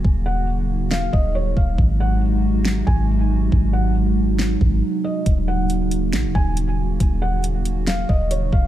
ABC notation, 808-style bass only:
X:1
M:4/4
L:1/16
Q:1/4=138
K:Ebdor
V:1 name="808-style bass" clef=bass
E,,,8- E,,,2 E,,,4 E,,,2 | A,,,8- A,,,2 A,,,6 | A,,,8- A,,,2 A,,,2 z4 | E,,,8 B,,, E,,, E,,,6 |
E,,,8- E,,,2 E,,,4 E,,,2 |]